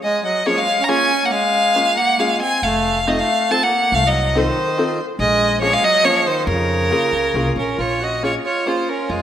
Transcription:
0.03 accordion G#3, violin D#5
0.23 accordion F#3, violin D#5
0.45 accordion F3, five-string banjo A#3 C#4 F4 G#4, violin C#5
0.54 accordion G#3, violin F5
0.80 accordion C#4, violin A#5
0.86 five-string banjo A#3 C#4 F4 G#4, accordion C#4, violin G#5
1.23 accordion A#3, violin F#5
1.30 accordion G#3, violin F5
1.75 five-string banjo A#3 C#4 F4 G#4
1.95 accordion A#3, violin F#5
2.17 accordion G#3, five-string banjo A#3 C#4 F4 G#4, violin F5
2.39 accordion C4, violin G#5
2.62 upright bass F1, accordion A3, violin F5
3.07 accordion A3, five-string banjo C4 D#4 F4 A4, violin D#5
3.19 accordion A3, violin F5
3.50 five-string banjo C4 D#4 F4 A4, accordion C4, violin A5
3.63 accordion A#3, violin F#5
3.92 upright bass C2, accordion A3, violin F5
4.05 accordion F#3, violin D#5
4.35 accordion D#3, five-string banjo C4 D#4 F4 A4, violin C5
4.78 five-string banjo C4 D#4 F4 A4
5.19 upright bass A#1, accordion G#3, violin D#5
5.61 accordion F3, five-string banjo A#3 C#4 F4 G#4, violin C#5
5.72 accordion G#3, violin F5
5.82 accordion F#3, violin D#5
6.03 accordion F3, five-string banjo A#3 C#4 F4 G#4, violin C#5
6.24 accordion D#3, violin C5
6.46 upright bass F2, accordion C#3, violin A#4
6.91 five-string banjo A#3 C#4 F4 G#4
7.12 upright bass C#2
7.34 upright bass C2, five-string banjo A#3 C#4 F4 G#4
7.56 upright bass A#1, accordion C#4, violin A#4
7.77 upright bass A#1, accordion F4, violin C#5
8.00 accordion F#4, violin D#5
8.22 five-string banjo A#3 C#4 F4 G#4, accordion F4, violin C#5
8.44 accordion F4, violin C#5
8.66 five-string banjo A#3 C#4 F4 G#4, accordion F4, violin C5
8.89 accordion C#4, violin A#4
9.10 upright bass F2, accordion G#3, violin F4

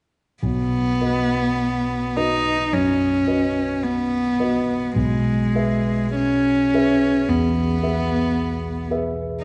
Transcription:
0.43 grand piano B1, cello B3
1.01 grand piano F#4 B4 D#5
2.16 cello D#4, grand piano F#4 B4 D#5
2.73 grand piano F#2, cello C#4
3.27 grand piano F#4 B4 D#5
3.83 cello B3
4.40 grand piano F#4 B4 D#5
4.96 grand piano B1, cello G#3
5.55 grand piano G#4 B4 E5
6.15 cello C#4
6.74 grand piano G#4 B4 E5
7.29 grand piano E2, cello B3
7.83 grand piano G#4 B4 E5
8.91 grand piano G#4 B4 E5

